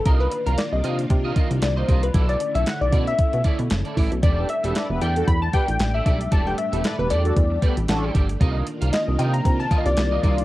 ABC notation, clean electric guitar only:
X:1
M:4/4
L:1/16
Q:"Swing 16ths" 1/4=115
K:Clyd
V:1 name="Clean electric guitar"
[=F_B_e]2 z [FB=f] z2 [FBe] z2 [FBe] [FBe] z2 [FBe] [FBe] z | [EAd]2 z [EAe] z2 [EAd] z3 [EAd] z2 [EAd] [EAd] z | [GAd]2 z [GAe] z2 [GAd] z3 [GAd] z2 [GAd] [GAd] z | [GAd]2 z [GAe] z2 [GAd] z3 [GAd] z2 [GAd] [GAd] z |
[=F_B_e]2 z [FB=f] z2 [FBe] z3 [FBe] z2 [FBe] [FBe] z |]